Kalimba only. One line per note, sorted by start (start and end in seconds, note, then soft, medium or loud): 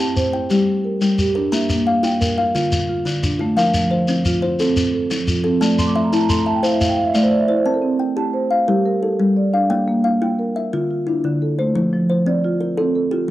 0.00 0.33 G4 medium
0.00 0.32 G5 medium
0.33 0.67 G5 medium
0.51 0.85 G3 medium
1.02 1.35 G3 medium
1.35 1.69 A#4 medium
1.52 1.86 A#3 medium
1.52 2.03 A#5 medium
1.87 2.37 F5 medium
2.03 2.37 F4 medium
2.38 2.72 F5 medium
2.55 2.89 D3 medium
3.05 3.40 D3 medium
3.39 3.74 F4 medium
3.57 3.91 F3 medium
3.57 4.08 F5 medium
3.91 4.41 C5 medium
4.08 4.42 C4 medium
4.42 4.93 C5 medium
4.60 4.93 A4 medium
5.11 5.45 F3 medium
5.44 5.78 A4 medium
5.61 5.95 A3 medium
5.61 6.12 A5 medium
5.96 6.45 E5 medium
6.13 6.47 E4 medium
6.46 6.97 E5 medium
6.63 6.97 C5 medium
7.15 7.49 A3 medium
7.48 7.83 C5 medium
7.66 8.00 C4 medium
7.66 8.17 A5 medium
8.00 8.51 G5 medium
8.17 8.51 G4 medium
8.51 8.85 F5 medium
8.68 9.02 G3 medium
8.68 9.19 A#4 medium
9.03 9.53 A4 medium
9.19 9.53 G3 medium
9.54 9.87 F5 medium
9.70 10.04 A#3 medium
9.70 10.21 G5 medium
10.04 10.55 F5 medium
10.22 10.56 F4 medium
10.56 10.90 E5 medium
10.73 11.07 D3 medium
10.73 11.24 F4 medium
11.07 11.58 E4 medium
11.24 11.58 D3 medium
11.59 11.92 C5 medium
11.75 12.09 F3 medium
12.10 12.60 C5 medium
12.26 12.60 C4 medium
12.61 13.12 A#4 medium
12.77 13.29 A4 medium
13.11 13.31 G4 medium